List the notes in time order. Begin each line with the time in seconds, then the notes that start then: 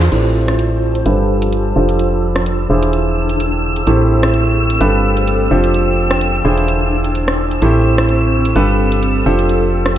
Already playing: F4 C5 D5 G#5
0.01 snare, closed hi-hat, tambourine, shaker
0.12 A1 A2 C4 E4 G4 A4 C5 E6, closed hi-hat, crash
0.33 A5
0.48 cross-stick, closed hi-hat
0.59 closed hi-hat
0.95 closed hi-hat
1.06 G1 G3 D4 F4 G4 A4 B4, closed hi-hat
1.18 B5
1.42 closed hi-hat
1.53 closed hi-hat
1.76 F1 F3 D4 F4 G4 A4 C5
1.89 closed hi-hat
1.99 closed hi-hat
2.04 A4 G5
2.36 cross-stick, closed hi-hat
2.46 closed hi-hat
2.70 E1 E3 D4 E4 F4 G#4 C5
2.81 G#4 C5, closed hi-hat
2.93 closed hi-hat
3.29 closed hi-hat
3.40 closed hi-hat
3.76 closed hi-hat
3.87 A1 A2 C4 E4 G4 A4 C5, closed hi-hat
3.95 A4
4.23 cross-stick, closed hi-hat
4.30 G5
4.34 closed hi-hat
4.70 closed hi-hat
4.81 G1 G3 D4 F4 G4 A4 B4, closed hi-hat
5.13 F5, closed hi-hat
5.27 closed hi-hat
5.51 F1 F3 D4 F4 G4 A4 C5
5.63 G5, closed hi-hat
5.74 closed hi-hat
6.11 cross-stick, closed hi-hat
6.21 closed hi-hat
6.45 E1 E3 D4 E4 F4 G#4 C5
6.57 C5, closed hi-hat
6.68 closed hi-hat
6.97 G#5
7.04 closed hi-hat
7.15 closed hi-hat
7.28 cross-stick
7.51 closed hi-hat
7.62 A1 A2 C4 E4 G4 A4 C5 E6, closed hi-hat
7.73 A4
7.98 cross-stick, closed hi-hat
8.05 G5
8.09 closed hi-hat
8.45 closed hi-hat
8.56 G1 G3 D4 F4 G4 A4 B4, closed hi-hat
8.88 F5, closed hi-hat
9.03 closed hi-hat
9.26 F1 F3 D4 F4 G4 A4 C5
9.39 closed hi-hat
9.49 closed hi-hat
9.86 cross-stick, closed hi-hat